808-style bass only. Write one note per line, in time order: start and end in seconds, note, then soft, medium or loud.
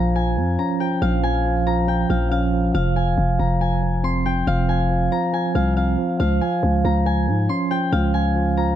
0.00 0.39 A#1 loud
0.37 0.58 F2 loud
1.02 2.06 A#1 loud
2.10 2.72 A#1 loud
2.75 3.16 F1 loud
3.18 3.38 F1 loud
3.39 4.43 F1 loud
4.47 5.09 F1 loud
5.55 5.97 C2 loud
6.20 6.41 C#2 loud
6.63 6.84 C#2 loud
6.85 7.29 C#2 loud
7.28 7.48 G#2 loud
7.93 8.76 C#2 loud